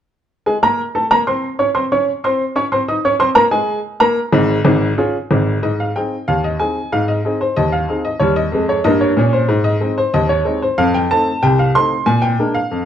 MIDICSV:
0, 0, Header, 1, 2, 480
1, 0, Start_track
1, 0, Key_signature, -4, "major"
1, 0, Tempo, 644468
1, 346, Time_signature, 2, 2, 24, 8
1, 9571, End_track
2, 0, Start_track
2, 0, Title_t, "Upright piano"
2, 0, Program_c, 0, 0
2, 345, Note_on_c, 0, 80, 62
2, 346, Note_on_c, 0, 56, 56
2, 347, Note_on_c, 0, 68, 61
2, 411, Note_off_c, 0, 80, 0
2, 412, Note_off_c, 0, 56, 0
2, 413, Note_off_c, 0, 68, 0
2, 467, Note_on_c, 0, 70, 64
2, 468, Note_on_c, 0, 58, 61
2, 468, Note_on_c, 0, 82, 70
2, 599, Note_off_c, 0, 58, 0
2, 599, Note_off_c, 0, 70, 0
2, 600, Note_off_c, 0, 82, 0
2, 707, Note_on_c, 0, 69, 62
2, 708, Note_on_c, 0, 81, 59
2, 709, Note_on_c, 0, 57, 66
2, 773, Note_off_c, 0, 69, 0
2, 773, Note_off_c, 0, 81, 0
2, 775, Note_off_c, 0, 57, 0
2, 826, Note_on_c, 0, 82, 74
2, 829, Note_on_c, 0, 58, 71
2, 831, Note_on_c, 0, 70, 64
2, 892, Note_off_c, 0, 82, 0
2, 894, Note_off_c, 0, 58, 0
2, 896, Note_off_c, 0, 70, 0
2, 947, Note_on_c, 0, 60, 70
2, 947, Note_on_c, 0, 84, 63
2, 949, Note_on_c, 0, 72, 59
2, 1079, Note_off_c, 0, 60, 0
2, 1079, Note_off_c, 0, 84, 0
2, 1080, Note_off_c, 0, 72, 0
2, 1185, Note_on_c, 0, 73, 70
2, 1185, Note_on_c, 0, 85, 60
2, 1186, Note_on_c, 0, 61, 58
2, 1251, Note_off_c, 0, 73, 0
2, 1251, Note_off_c, 0, 85, 0
2, 1252, Note_off_c, 0, 61, 0
2, 1301, Note_on_c, 0, 84, 63
2, 1302, Note_on_c, 0, 60, 69
2, 1302, Note_on_c, 0, 72, 65
2, 1368, Note_off_c, 0, 84, 0
2, 1369, Note_off_c, 0, 60, 0
2, 1369, Note_off_c, 0, 72, 0
2, 1429, Note_on_c, 0, 73, 63
2, 1429, Note_on_c, 0, 85, 66
2, 1430, Note_on_c, 0, 61, 69
2, 1560, Note_off_c, 0, 61, 0
2, 1560, Note_off_c, 0, 73, 0
2, 1560, Note_off_c, 0, 85, 0
2, 1669, Note_on_c, 0, 60, 73
2, 1671, Note_on_c, 0, 72, 72
2, 1671, Note_on_c, 0, 84, 63
2, 1798, Note_off_c, 0, 60, 0
2, 1800, Note_off_c, 0, 72, 0
2, 1800, Note_off_c, 0, 84, 0
2, 1904, Note_on_c, 0, 61, 71
2, 1906, Note_on_c, 0, 85, 73
2, 1908, Note_on_c, 0, 73, 80
2, 1969, Note_off_c, 0, 61, 0
2, 1971, Note_off_c, 0, 85, 0
2, 1972, Note_off_c, 0, 73, 0
2, 2025, Note_on_c, 0, 84, 60
2, 2027, Note_on_c, 0, 60, 66
2, 2028, Note_on_c, 0, 72, 77
2, 2090, Note_off_c, 0, 84, 0
2, 2091, Note_off_c, 0, 60, 0
2, 2092, Note_off_c, 0, 72, 0
2, 2147, Note_on_c, 0, 75, 68
2, 2148, Note_on_c, 0, 63, 66
2, 2149, Note_on_c, 0, 87, 64
2, 2211, Note_off_c, 0, 63, 0
2, 2211, Note_off_c, 0, 75, 0
2, 2212, Note_off_c, 0, 87, 0
2, 2271, Note_on_c, 0, 73, 76
2, 2272, Note_on_c, 0, 85, 72
2, 2273, Note_on_c, 0, 61, 73
2, 2333, Note_off_c, 0, 73, 0
2, 2334, Note_off_c, 0, 85, 0
2, 2335, Note_off_c, 0, 61, 0
2, 2380, Note_on_c, 0, 72, 87
2, 2381, Note_on_c, 0, 60, 78
2, 2382, Note_on_c, 0, 84, 82
2, 2445, Note_off_c, 0, 72, 0
2, 2446, Note_off_c, 0, 60, 0
2, 2447, Note_off_c, 0, 84, 0
2, 2496, Note_on_c, 0, 70, 74
2, 2496, Note_on_c, 0, 82, 85
2, 2498, Note_on_c, 0, 58, 79
2, 2562, Note_off_c, 0, 82, 0
2, 2563, Note_off_c, 0, 70, 0
2, 2564, Note_off_c, 0, 58, 0
2, 2616, Note_on_c, 0, 68, 76
2, 2617, Note_on_c, 0, 56, 73
2, 2618, Note_on_c, 0, 80, 76
2, 2814, Note_off_c, 0, 68, 0
2, 2815, Note_off_c, 0, 56, 0
2, 2816, Note_off_c, 0, 80, 0
2, 2979, Note_on_c, 0, 70, 66
2, 2980, Note_on_c, 0, 82, 78
2, 2982, Note_on_c, 0, 58, 80
2, 3111, Note_off_c, 0, 70, 0
2, 3112, Note_off_c, 0, 82, 0
2, 3113, Note_off_c, 0, 58, 0
2, 3221, Note_on_c, 0, 32, 87
2, 3221, Note_on_c, 0, 44, 104
2, 3413, Note_off_c, 0, 32, 0
2, 3413, Note_off_c, 0, 44, 0
2, 3460, Note_on_c, 0, 44, 91
2, 3461, Note_on_c, 0, 32, 92
2, 3653, Note_off_c, 0, 44, 0
2, 3654, Note_off_c, 0, 32, 0
2, 3708, Note_on_c, 0, 65, 63
2, 3708, Note_on_c, 0, 68, 63
2, 3710, Note_on_c, 0, 61, 63
2, 3840, Note_off_c, 0, 65, 0
2, 3840, Note_off_c, 0, 68, 0
2, 3841, Note_off_c, 0, 61, 0
2, 3953, Note_on_c, 0, 32, 78
2, 3955, Note_on_c, 0, 44, 76
2, 4143, Note_off_c, 0, 32, 0
2, 4144, Note_off_c, 0, 44, 0
2, 4193, Note_on_c, 0, 44, 65
2, 4193, Note_on_c, 0, 75, 71
2, 4310, Note_off_c, 0, 75, 0
2, 4320, Note_on_c, 0, 77, 70
2, 4395, Note_off_c, 0, 44, 0
2, 4434, Note_off_c, 0, 77, 0
2, 4438, Note_on_c, 0, 79, 68
2, 4440, Note_on_c, 0, 60, 42
2, 4445, Note_on_c, 0, 63, 35
2, 4448, Note_on_c, 0, 68, 36
2, 4569, Note_off_c, 0, 60, 0
2, 4573, Note_off_c, 0, 63, 0
2, 4575, Note_off_c, 0, 68, 0
2, 4661, Note_off_c, 0, 79, 0
2, 4676, Note_on_c, 0, 77, 84
2, 4678, Note_on_c, 0, 39, 65
2, 4792, Note_off_c, 0, 77, 0
2, 4798, Note_on_c, 0, 75, 68
2, 4879, Note_off_c, 0, 39, 0
2, 4912, Note_on_c, 0, 60, 37
2, 4912, Note_on_c, 0, 80, 70
2, 4914, Note_off_c, 0, 75, 0
2, 4916, Note_on_c, 0, 63, 42
2, 4919, Note_on_c, 0, 68, 42
2, 5044, Note_off_c, 0, 60, 0
2, 5046, Note_off_c, 0, 63, 0
2, 5049, Note_off_c, 0, 68, 0
2, 5139, Note_off_c, 0, 80, 0
2, 5157, Note_on_c, 0, 44, 75
2, 5158, Note_on_c, 0, 77, 88
2, 5274, Note_off_c, 0, 77, 0
2, 5274, Note_on_c, 0, 75, 69
2, 5359, Note_off_c, 0, 44, 0
2, 5399, Note_on_c, 0, 60, 40
2, 5400, Note_on_c, 0, 63, 42
2, 5406, Note_on_c, 0, 68, 46
2, 5500, Note_off_c, 0, 75, 0
2, 5518, Note_on_c, 0, 72, 70
2, 5529, Note_off_c, 0, 60, 0
2, 5530, Note_off_c, 0, 63, 0
2, 5534, Note_off_c, 0, 68, 0
2, 5634, Note_off_c, 0, 72, 0
2, 5634, Note_on_c, 0, 75, 83
2, 5638, Note_on_c, 0, 39, 67
2, 5753, Note_off_c, 0, 75, 0
2, 5753, Note_on_c, 0, 77, 79
2, 5839, Note_off_c, 0, 39, 0
2, 5874, Note_on_c, 0, 60, 39
2, 5879, Note_on_c, 0, 63, 44
2, 5884, Note_on_c, 0, 68, 40
2, 5944, Note_off_c, 0, 77, 0
2, 5993, Note_on_c, 0, 75, 69
2, 6005, Note_off_c, 0, 60, 0
2, 6009, Note_off_c, 0, 63, 0
2, 6013, Note_off_c, 0, 68, 0
2, 6104, Note_on_c, 0, 73, 83
2, 6108, Note_on_c, 0, 39, 65
2, 6112, Note_off_c, 0, 75, 0
2, 6123, Note_on_c, 0, 55, 65
2, 6227, Note_on_c, 0, 75, 78
2, 6228, Note_off_c, 0, 73, 0
2, 6301, Note_off_c, 0, 39, 0
2, 6310, Note_off_c, 0, 55, 0
2, 6345, Note_on_c, 0, 41, 67
2, 6364, Note_on_c, 0, 56, 71
2, 6456, Note_off_c, 0, 75, 0
2, 6472, Note_on_c, 0, 73, 73
2, 6539, Note_off_c, 0, 41, 0
2, 6550, Note_off_c, 0, 56, 0
2, 6586, Note_on_c, 0, 75, 93
2, 6587, Note_on_c, 0, 43, 77
2, 6591, Note_off_c, 0, 73, 0
2, 6600, Note_on_c, 0, 58, 68
2, 6708, Note_off_c, 0, 75, 0
2, 6710, Note_on_c, 0, 73, 80
2, 6779, Note_off_c, 0, 43, 0
2, 6787, Note_off_c, 0, 58, 0
2, 6828, Note_on_c, 0, 46, 76
2, 6842, Note_on_c, 0, 61, 72
2, 6937, Note_off_c, 0, 73, 0
2, 6947, Note_on_c, 0, 72, 79
2, 7020, Note_off_c, 0, 46, 0
2, 7028, Note_off_c, 0, 61, 0
2, 7065, Note_on_c, 0, 44, 83
2, 7139, Note_off_c, 0, 72, 0
2, 7181, Note_on_c, 0, 75, 84
2, 7269, Note_off_c, 0, 44, 0
2, 7304, Note_on_c, 0, 56, 47
2, 7309, Note_on_c, 0, 60, 51
2, 7310, Note_on_c, 0, 63, 57
2, 7374, Note_off_c, 0, 75, 0
2, 7431, Note_on_c, 0, 72, 87
2, 7436, Note_off_c, 0, 56, 0
2, 7439, Note_off_c, 0, 60, 0
2, 7440, Note_off_c, 0, 63, 0
2, 7548, Note_off_c, 0, 72, 0
2, 7550, Note_on_c, 0, 39, 76
2, 7550, Note_on_c, 0, 75, 94
2, 7666, Note_on_c, 0, 73, 82
2, 7667, Note_off_c, 0, 75, 0
2, 7751, Note_off_c, 0, 39, 0
2, 7784, Note_on_c, 0, 56, 45
2, 7784, Note_on_c, 0, 60, 51
2, 7791, Note_on_c, 0, 63, 51
2, 7892, Note_off_c, 0, 73, 0
2, 7913, Note_on_c, 0, 72, 77
2, 7916, Note_off_c, 0, 56, 0
2, 7916, Note_off_c, 0, 60, 0
2, 7920, Note_off_c, 0, 63, 0
2, 8028, Note_off_c, 0, 72, 0
2, 8028, Note_on_c, 0, 41, 95
2, 8028, Note_on_c, 0, 77, 103
2, 8145, Note_off_c, 0, 77, 0
2, 8151, Note_on_c, 0, 79, 92
2, 8230, Note_off_c, 0, 41, 0
2, 8267, Note_off_c, 0, 79, 0
2, 8274, Note_on_c, 0, 81, 96
2, 8278, Note_on_c, 0, 57, 46
2, 8280, Note_on_c, 0, 60, 52
2, 8284, Note_on_c, 0, 63, 52
2, 8405, Note_off_c, 0, 57, 0
2, 8406, Note_off_c, 0, 60, 0
2, 8410, Note_off_c, 0, 63, 0
2, 8496, Note_off_c, 0, 81, 0
2, 8510, Note_on_c, 0, 79, 100
2, 8513, Note_on_c, 0, 36, 83
2, 8626, Note_off_c, 0, 79, 0
2, 8634, Note_on_c, 0, 77, 82
2, 8711, Note_off_c, 0, 36, 0
2, 8747, Note_off_c, 0, 77, 0
2, 8753, Note_on_c, 0, 57, 41
2, 8753, Note_on_c, 0, 84, 95
2, 8758, Note_on_c, 0, 60, 43
2, 8759, Note_on_c, 0, 63, 50
2, 8882, Note_off_c, 0, 57, 0
2, 8885, Note_off_c, 0, 60, 0
2, 8886, Note_off_c, 0, 63, 0
2, 8975, Note_off_c, 0, 84, 0
2, 8983, Note_on_c, 0, 80, 93
2, 8985, Note_on_c, 0, 46, 79
2, 9099, Note_on_c, 0, 79, 92
2, 9102, Note_off_c, 0, 80, 0
2, 9187, Note_off_c, 0, 46, 0
2, 9230, Note_on_c, 0, 58, 49
2, 9231, Note_on_c, 0, 56, 48
2, 9232, Note_on_c, 0, 62, 50
2, 9328, Note_off_c, 0, 79, 0
2, 9344, Note_on_c, 0, 77, 85
2, 9360, Note_off_c, 0, 56, 0
2, 9360, Note_off_c, 0, 58, 0
2, 9362, Note_off_c, 0, 62, 0
2, 9469, Note_on_c, 0, 41, 68
2, 9571, Note_off_c, 0, 41, 0
2, 9571, Note_off_c, 0, 77, 0
2, 9571, End_track
0, 0, End_of_file